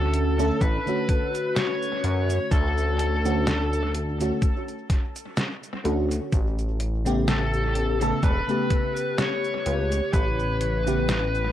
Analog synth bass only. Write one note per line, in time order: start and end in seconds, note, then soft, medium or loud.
0.00 0.51 D2 loud
0.61 0.80 A1 loud
2.04 2.39 F#2 loud
2.52 4.32 D2 loud
5.85 6.20 D2 medium
6.33 8.13 A1 loud
8.23 8.41 E1 loud
9.66 10.01 C#2 loud
10.13 11.52 A1 loud